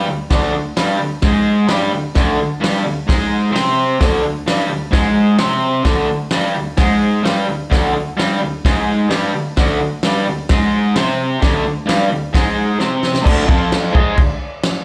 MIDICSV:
0, 0, Header, 1, 3, 480
1, 0, Start_track
1, 0, Tempo, 462250
1, 314, Time_signature, 4, 2, 24, 8
1, 15415, End_track
2, 0, Start_track
2, 0, Title_t, "Overdriven electric guitar"
2, 0, Program_c, 0, 29
2, 78, Note_on_c, 0, 38, 63
2, 268, Note_off_c, 0, 38, 0
2, 313, Note_on_c, 0, 38, 95
2, 323, Note_on_c, 0, 50, 109
2, 544, Note_off_c, 0, 38, 0
2, 551, Note_off_c, 0, 50, 0
2, 556, Note_on_c, 0, 38, 67
2, 747, Note_off_c, 0, 38, 0
2, 797, Note_on_c, 0, 43, 89
2, 807, Note_on_c, 0, 55, 81
2, 1025, Note_off_c, 0, 43, 0
2, 1029, Note_on_c, 0, 38, 69
2, 1034, Note_off_c, 0, 55, 0
2, 1224, Note_off_c, 0, 38, 0
2, 1272, Note_on_c, 0, 44, 88
2, 1289, Note_on_c, 0, 56, 99
2, 1741, Note_off_c, 0, 44, 0
2, 1745, Note_on_c, 0, 43, 87
2, 1753, Note_off_c, 0, 56, 0
2, 1758, Note_on_c, 0, 55, 95
2, 1983, Note_off_c, 0, 43, 0
2, 1990, Note_off_c, 0, 55, 0
2, 1995, Note_on_c, 0, 38, 69
2, 2188, Note_off_c, 0, 38, 0
2, 2235, Note_on_c, 0, 38, 91
2, 2254, Note_on_c, 0, 50, 110
2, 2469, Note_off_c, 0, 38, 0
2, 2479, Note_off_c, 0, 50, 0
2, 2485, Note_on_c, 0, 38, 73
2, 2673, Note_off_c, 0, 38, 0
2, 2708, Note_on_c, 0, 43, 85
2, 2719, Note_on_c, 0, 55, 91
2, 2946, Note_off_c, 0, 43, 0
2, 2951, Note_off_c, 0, 55, 0
2, 2961, Note_on_c, 0, 38, 61
2, 3152, Note_off_c, 0, 38, 0
2, 3187, Note_on_c, 0, 44, 89
2, 3197, Note_on_c, 0, 56, 90
2, 3650, Note_off_c, 0, 44, 0
2, 3654, Note_on_c, 0, 48, 79
2, 3660, Note_off_c, 0, 56, 0
2, 3664, Note_on_c, 0, 60, 98
2, 4140, Note_off_c, 0, 48, 0
2, 4145, Note_off_c, 0, 60, 0
2, 4151, Note_on_c, 0, 38, 89
2, 4159, Note_on_c, 0, 50, 110
2, 4380, Note_off_c, 0, 38, 0
2, 4392, Note_on_c, 0, 38, 76
2, 4393, Note_off_c, 0, 50, 0
2, 4589, Note_off_c, 0, 38, 0
2, 4635, Note_on_c, 0, 43, 79
2, 4652, Note_on_c, 0, 55, 86
2, 4862, Note_off_c, 0, 43, 0
2, 4866, Note_on_c, 0, 38, 68
2, 4880, Note_off_c, 0, 55, 0
2, 5066, Note_off_c, 0, 38, 0
2, 5098, Note_on_c, 0, 44, 98
2, 5117, Note_on_c, 0, 56, 103
2, 5584, Note_off_c, 0, 44, 0
2, 5589, Note_off_c, 0, 56, 0
2, 5591, Note_on_c, 0, 48, 81
2, 5593, Note_on_c, 0, 60, 98
2, 6060, Note_off_c, 0, 48, 0
2, 6065, Note_on_c, 0, 38, 94
2, 6072, Note_off_c, 0, 60, 0
2, 6077, Note_on_c, 0, 50, 100
2, 6296, Note_off_c, 0, 38, 0
2, 6309, Note_on_c, 0, 38, 77
2, 6314, Note_off_c, 0, 50, 0
2, 6509, Note_off_c, 0, 38, 0
2, 6559, Note_on_c, 0, 43, 89
2, 6565, Note_on_c, 0, 55, 86
2, 6795, Note_off_c, 0, 43, 0
2, 6798, Note_off_c, 0, 55, 0
2, 6805, Note_on_c, 0, 38, 62
2, 6997, Note_off_c, 0, 38, 0
2, 7030, Note_on_c, 0, 44, 84
2, 7034, Note_on_c, 0, 56, 90
2, 7509, Note_off_c, 0, 44, 0
2, 7513, Note_on_c, 0, 43, 86
2, 7514, Note_off_c, 0, 56, 0
2, 7519, Note_on_c, 0, 55, 105
2, 7746, Note_off_c, 0, 43, 0
2, 7751, Note_on_c, 0, 38, 65
2, 7756, Note_off_c, 0, 55, 0
2, 7951, Note_off_c, 0, 38, 0
2, 7994, Note_on_c, 0, 38, 101
2, 8007, Note_on_c, 0, 50, 100
2, 8229, Note_off_c, 0, 38, 0
2, 8240, Note_off_c, 0, 50, 0
2, 8242, Note_on_c, 0, 38, 75
2, 8437, Note_off_c, 0, 38, 0
2, 8480, Note_on_c, 0, 43, 92
2, 8486, Note_on_c, 0, 55, 97
2, 8717, Note_off_c, 0, 43, 0
2, 8720, Note_off_c, 0, 55, 0
2, 8721, Note_on_c, 0, 38, 69
2, 8917, Note_off_c, 0, 38, 0
2, 8985, Note_on_c, 0, 44, 97
2, 8992, Note_on_c, 0, 56, 92
2, 9439, Note_off_c, 0, 44, 0
2, 9444, Note_on_c, 0, 43, 98
2, 9451, Note_off_c, 0, 56, 0
2, 9456, Note_on_c, 0, 55, 95
2, 9679, Note_off_c, 0, 43, 0
2, 9685, Note_off_c, 0, 55, 0
2, 9703, Note_on_c, 0, 38, 65
2, 9888, Note_off_c, 0, 38, 0
2, 9940, Note_on_c, 0, 38, 92
2, 9950, Note_on_c, 0, 50, 100
2, 10168, Note_off_c, 0, 38, 0
2, 10173, Note_off_c, 0, 50, 0
2, 10183, Note_on_c, 0, 38, 77
2, 10368, Note_off_c, 0, 38, 0
2, 10420, Note_on_c, 0, 43, 79
2, 10436, Note_on_c, 0, 55, 107
2, 10648, Note_off_c, 0, 43, 0
2, 10656, Note_off_c, 0, 55, 0
2, 10659, Note_on_c, 0, 38, 66
2, 10847, Note_off_c, 0, 38, 0
2, 10907, Note_on_c, 0, 44, 84
2, 10923, Note_on_c, 0, 56, 108
2, 11371, Note_off_c, 0, 44, 0
2, 11375, Note_on_c, 0, 48, 92
2, 11379, Note_off_c, 0, 56, 0
2, 11393, Note_on_c, 0, 60, 104
2, 11839, Note_off_c, 0, 48, 0
2, 11843, Note_on_c, 0, 38, 98
2, 11854, Note_off_c, 0, 60, 0
2, 11862, Note_on_c, 0, 50, 94
2, 12074, Note_off_c, 0, 38, 0
2, 12087, Note_on_c, 0, 38, 73
2, 12088, Note_off_c, 0, 50, 0
2, 12279, Note_off_c, 0, 38, 0
2, 12314, Note_on_c, 0, 43, 86
2, 12330, Note_on_c, 0, 55, 97
2, 12553, Note_off_c, 0, 43, 0
2, 12561, Note_off_c, 0, 55, 0
2, 12573, Note_on_c, 0, 38, 66
2, 12762, Note_off_c, 0, 38, 0
2, 12802, Note_on_c, 0, 44, 90
2, 12821, Note_on_c, 0, 56, 96
2, 13273, Note_off_c, 0, 44, 0
2, 13277, Note_on_c, 0, 48, 95
2, 13285, Note_off_c, 0, 56, 0
2, 13294, Note_on_c, 0, 60, 95
2, 13736, Note_off_c, 0, 48, 0
2, 13740, Note_on_c, 0, 38, 97
2, 13745, Note_off_c, 0, 60, 0
2, 13749, Note_on_c, 0, 50, 113
2, 13969, Note_off_c, 0, 38, 0
2, 13973, Note_on_c, 0, 41, 104
2, 13980, Note_off_c, 0, 50, 0
2, 13984, Note_on_c, 0, 53, 108
2, 14453, Note_off_c, 0, 41, 0
2, 14457, Note_on_c, 0, 44, 93
2, 14461, Note_off_c, 0, 53, 0
2, 14471, Note_on_c, 0, 56, 100
2, 14698, Note_off_c, 0, 44, 0
2, 14704, Note_off_c, 0, 56, 0
2, 14704, Note_on_c, 0, 38, 74
2, 14899, Note_off_c, 0, 38, 0
2, 15415, End_track
3, 0, Start_track
3, 0, Title_t, "Drums"
3, 316, Note_on_c, 9, 46, 44
3, 318, Note_on_c, 9, 36, 87
3, 318, Note_on_c, 9, 38, 97
3, 420, Note_off_c, 9, 46, 0
3, 421, Note_off_c, 9, 36, 0
3, 422, Note_off_c, 9, 38, 0
3, 796, Note_on_c, 9, 46, 53
3, 798, Note_on_c, 9, 38, 115
3, 900, Note_off_c, 9, 46, 0
3, 902, Note_off_c, 9, 38, 0
3, 1268, Note_on_c, 9, 46, 50
3, 1270, Note_on_c, 9, 38, 105
3, 1278, Note_on_c, 9, 36, 99
3, 1372, Note_off_c, 9, 46, 0
3, 1374, Note_off_c, 9, 38, 0
3, 1382, Note_off_c, 9, 36, 0
3, 1749, Note_on_c, 9, 46, 50
3, 1751, Note_on_c, 9, 38, 106
3, 1853, Note_off_c, 9, 46, 0
3, 1855, Note_off_c, 9, 38, 0
3, 2234, Note_on_c, 9, 46, 44
3, 2236, Note_on_c, 9, 38, 91
3, 2243, Note_on_c, 9, 36, 92
3, 2338, Note_off_c, 9, 46, 0
3, 2340, Note_off_c, 9, 38, 0
3, 2347, Note_off_c, 9, 36, 0
3, 2737, Note_on_c, 9, 46, 54
3, 2739, Note_on_c, 9, 38, 105
3, 2841, Note_off_c, 9, 46, 0
3, 2843, Note_off_c, 9, 38, 0
3, 3208, Note_on_c, 9, 36, 100
3, 3212, Note_on_c, 9, 46, 54
3, 3214, Note_on_c, 9, 38, 100
3, 3312, Note_off_c, 9, 36, 0
3, 3316, Note_off_c, 9, 46, 0
3, 3318, Note_off_c, 9, 38, 0
3, 3691, Note_on_c, 9, 46, 55
3, 3693, Note_on_c, 9, 38, 102
3, 3795, Note_off_c, 9, 46, 0
3, 3797, Note_off_c, 9, 38, 0
3, 4159, Note_on_c, 9, 46, 51
3, 4161, Note_on_c, 9, 38, 92
3, 4163, Note_on_c, 9, 36, 91
3, 4263, Note_off_c, 9, 46, 0
3, 4265, Note_off_c, 9, 38, 0
3, 4266, Note_off_c, 9, 36, 0
3, 4646, Note_on_c, 9, 46, 53
3, 4648, Note_on_c, 9, 38, 110
3, 4750, Note_off_c, 9, 46, 0
3, 4752, Note_off_c, 9, 38, 0
3, 5118, Note_on_c, 9, 36, 96
3, 5120, Note_on_c, 9, 46, 50
3, 5122, Note_on_c, 9, 38, 105
3, 5222, Note_off_c, 9, 36, 0
3, 5224, Note_off_c, 9, 46, 0
3, 5226, Note_off_c, 9, 38, 0
3, 5591, Note_on_c, 9, 46, 49
3, 5593, Note_on_c, 9, 38, 104
3, 5695, Note_off_c, 9, 46, 0
3, 5697, Note_off_c, 9, 38, 0
3, 6072, Note_on_c, 9, 46, 46
3, 6074, Note_on_c, 9, 38, 91
3, 6076, Note_on_c, 9, 36, 90
3, 6175, Note_off_c, 9, 46, 0
3, 6178, Note_off_c, 9, 38, 0
3, 6180, Note_off_c, 9, 36, 0
3, 6548, Note_on_c, 9, 46, 58
3, 6550, Note_on_c, 9, 38, 113
3, 6652, Note_off_c, 9, 46, 0
3, 6654, Note_off_c, 9, 38, 0
3, 7033, Note_on_c, 9, 46, 56
3, 7035, Note_on_c, 9, 38, 99
3, 7042, Note_on_c, 9, 36, 101
3, 7137, Note_off_c, 9, 46, 0
3, 7139, Note_off_c, 9, 38, 0
3, 7146, Note_off_c, 9, 36, 0
3, 7531, Note_on_c, 9, 46, 53
3, 7533, Note_on_c, 9, 38, 103
3, 7635, Note_off_c, 9, 46, 0
3, 7637, Note_off_c, 9, 38, 0
3, 8012, Note_on_c, 9, 36, 85
3, 8018, Note_on_c, 9, 46, 49
3, 8020, Note_on_c, 9, 38, 89
3, 8116, Note_off_c, 9, 36, 0
3, 8122, Note_off_c, 9, 46, 0
3, 8124, Note_off_c, 9, 38, 0
3, 8507, Note_on_c, 9, 46, 54
3, 8509, Note_on_c, 9, 38, 113
3, 8611, Note_off_c, 9, 46, 0
3, 8613, Note_off_c, 9, 38, 0
3, 8980, Note_on_c, 9, 36, 102
3, 8987, Note_on_c, 9, 46, 51
3, 8989, Note_on_c, 9, 38, 114
3, 9084, Note_off_c, 9, 36, 0
3, 9091, Note_off_c, 9, 46, 0
3, 9093, Note_off_c, 9, 38, 0
3, 9455, Note_on_c, 9, 46, 51
3, 9457, Note_on_c, 9, 38, 105
3, 9558, Note_off_c, 9, 46, 0
3, 9561, Note_off_c, 9, 38, 0
3, 9936, Note_on_c, 9, 46, 47
3, 9938, Note_on_c, 9, 38, 90
3, 9942, Note_on_c, 9, 36, 82
3, 10040, Note_off_c, 9, 46, 0
3, 10042, Note_off_c, 9, 38, 0
3, 10046, Note_off_c, 9, 36, 0
3, 10413, Note_on_c, 9, 46, 52
3, 10415, Note_on_c, 9, 38, 103
3, 10517, Note_off_c, 9, 46, 0
3, 10519, Note_off_c, 9, 38, 0
3, 10894, Note_on_c, 9, 46, 53
3, 10896, Note_on_c, 9, 38, 107
3, 10904, Note_on_c, 9, 36, 99
3, 10998, Note_off_c, 9, 46, 0
3, 11000, Note_off_c, 9, 38, 0
3, 11008, Note_off_c, 9, 36, 0
3, 11378, Note_on_c, 9, 46, 49
3, 11380, Note_on_c, 9, 38, 114
3, 11481, Note_off_c, 9, 46, 0
3, 11483, Note_off_c, 9, 38, 0
3, 11860, Note_on_c, 9, 46, 49
3, 11862, Note_on_c, 9, 38, 96
3, 11865, Note_on_c, 9, 36, 90
3, 11964, Note_off_c, 9, 46, 0
3, 11966, Note_off_c, 9, 38, 0
3, 11969, Note_off_c, 9, 36, 0
3, 12343, Note_on_c, 9, 46, 56
3, 12345, Note_on_c, 9, 38, 107
3, 12447, Note_off_c, 9, 46, 0
3, 12449, Note_off_c, 9, 38, 0
3, 12818, Note_on_c, 9, 36, 97
3, 12822, Note_on_c, 9, 46, 50
3, 12824, Note_on_c, 9, 38, 108
3, 12922, Note_off_c, 9, 36, 0
3, 12925, Note_off_c, 9, 46, 0
3, 12927, Note_off_c, 9, 38, 0
3, 13287, Note_on_c, 9, 38, 57
3, 13391, Note_off_c, 9, 38, 0
3, 13530, Note_on_c, 9, 38, 74
3, 13634, Note_off_c, 9, 38, 0
3, 13647, Note_on_c, 9, 38, 77
3, 13751, Note_off_c, 9, 38, 0
3, 13768, Note_on_c, 9, 36, 99
3, 13774, Note_on_c, 9, 49, 108
3, 13774, Note_on_c, 9, 57, 55
3, 13872, Note_off_c, 9, 36, 0
3, 13877, Note_off_c, 9, 49, 0
3, 13877, Note_off_c, 9, 57, 0
3, 14007, Note_on_c, 9, 36, 104
3, 14110, Note_off_c, 9, 36, 0
3, 14248, Note_on_c, 9, 57, 66
3, 14250, Note_on_c, 9, 38, 119
3, 14352, Note_off_c, 9, 57, 0
3, 14354, Note_off_c, 9, 38, 0
3, 14485, Note_on_c, 9, 36, 111
3, 14589, Note_off_c, 9, 36, 0
3, 14719, Note_on_c, 9, 57, 64
3, 14723, Note_on_c, 9, 36, 99
3, 14823, Note_off_c, 9, 57, 0
3, 14827, Note_off_c, 9, 36, 0
3, 15195, Note_on_c, 9, 57, 68
3, 15197, Note_on_c, 9, 38, 119
3, 15299, Note_off_c, 9, 57, 0
3, 15301, Note_off_c, 9, 38, 0
3, 15415, End_track
0, 0, End_of_file